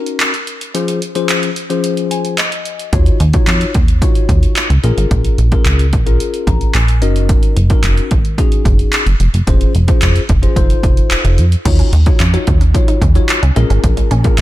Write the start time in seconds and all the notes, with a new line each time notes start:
Already playing: C#4 D#4 F#4 A#4
0.06 closed hi-hat
0.20 clap, closed hi-hat
0.34 closed hi-hat
0.47 closed hi-hat
0.61 closed hi-hat
0.74 F3 C#4 F4 G#4 C5, closed hi-hat
0.88 closed hi-hat
1.02 closed hi-hat
1.15 F3 C#4 F4 G#4 C5, closed hi-hat
1.29 clap, closed hi-hat
1.43 closed hi-hat
1.56 closed hi-hat
1.70 F3 C#4 F4 G#4 C5, closed hi-hat
1.84 closed hi-hat
1.97 closed hi-hat
2.11 G#5, closed hi-hat
2.25 closed hi-hat
2.38 D#5, clap, closed hi-hat
2.52 closed hi-hat
2.65 closed hi-hat
2.79 closed hi-hat
2.93 D#2 D#4 F4 F#4 C#5, kick, closed hi-hat
3.06 closed hi-hat
3.20 D#2, closed hi-hat
3.33 D#4 F4 F#4 C#5, kick, closed hi-hat
3.47 F2, clap, closed hi-hat
3.61 closed hi-hat
3.74 D#2, kick, closed hi-hat
3.88 closed hi-hat
4.02 D#4 F4 F#4 C#5, kick, closed hi-hat
4.15 closed hi-hat
4.29 D#2, kick, closed hi-hat
4.43 closed hi-hat
4.56 clap, closed hi-hat
4.70 C#2, closed hi-hat
4.83 A#1 C#4 F4 G#4 A#4, closed hi-hat
4.97 G#1, closed hi-hat
5.11 A#1, kick, closed hi-hat
5.25 closed hi-hat
5.38 A#1, closed hi-hat
5.52 C#4 F4 G#4 A#4, kick, closed hi-hat
5.65 C#2, clap, closed hi-hat
5.79 closed hi-hat
5.93 A#1, kick, closed hi-hat
6.06 C#4 F4 G#4 A#4, closed hi-hat
6.20 closed hi-hat
6.34 closed hi-hat
6.47 A#1 A#5, kick, closed hi-hat
6.61 closed hi-hat
6.75 A#1 G#5, clap, closed hi-hat
6.88 closed hi-hat
7.02 F#1 C#4 D#4 F#4 A#4 D#5, closed hi-hat
7.16 closed hi-hat
7.29 kick, closed hi-hat
7.43 closed hi-hat
7.56 F#1, closed hi-hat
7.70 C#4 D#4 F#4 A#4, kick, closed hi-hat
7.84 F#1, clap, closed hi-hat
7.97 closed hi-hat
8.11 G#1, kick, closed hi-hat
8.25 closed hi-hat
8.38 C#4 D#4 F#4 G#4, kick, closed hi-hat
8.52 closed hi-hat
8.65 F#1, kick, closed hi-hat
8.79 closed hi-hat
8.93 clap, closed hi-hat
9.06 F#1, closed hi-hat
9.20 F1, closed hi-hat
9.34 F#1, closed hi-hat
9.47 F1 C#4 F4 G#4 C5, kick, closed hi-hat
9.61 closed hi-hat
9.75 F1, closed hi-hat
9.88 C#4 F4 G#4 C5, kick, closed hi-hat
10.02 F1, clap, closed hi-hat
10.16 closed hi-hat
10.29 F1, kick, closed hi-hat
10.43 C#4 F4 G#4 C5, closed hi-hat
10.56 F1 D#4 F4 A4 C5, kick, closed hi-hat
10.70 closed hi-hat
10.83 F1, kick, closed hi-hat
10.97 closed hi-hat
11.11 F1, clap, closed hi-hat
11.25 F1, closed hi-hat
11.38 F2, closed hi-hat
11.52 closed hi-hat
11.65 D#2 D#4 F4 F#4 C#5, kick, closed hi-hat, crash
11.79 C#4, closed hi-hat
11.93 D#2, closed hi-hat
12.06 D#4 F4 F#4 C#5, kick, closed hi-hat
12.20 F2 C#4, clap, closed hi-hat
12.33 F#3 D#4 F4 F#4 C#5, closed hi-hat
12.47 D#2 D#4, kick, closed hi-hat
12.61 C#4, closed hi-hat
12.74 F#3 D#4 F4 F#4 C#5, kick, closed hi-hat
12.88 D#4, closed hi-hat
13.02 D#2 C#4, kick, closed hi-hat
13.15 F#3 D#4 F4 F#4 C#5, closed hi-hat
13.29 clap, closed hi-hat
13.43 C#2 C#4, closed hi-hat
13.56 A#1 G#3 C#4 F4 G#4 A#4, closed hi-hat
13.70 G#1 C#4, closed hi-hat
13.84 A#1, kick, closed hi-hat
13.97 G#3, closed hi-hat
14.11 A#1 C#4, closed hi-hat
14.24 A#3 C#4 F4 G#4 A#4, kick, closed hi-hat
14.38 closed hi-hat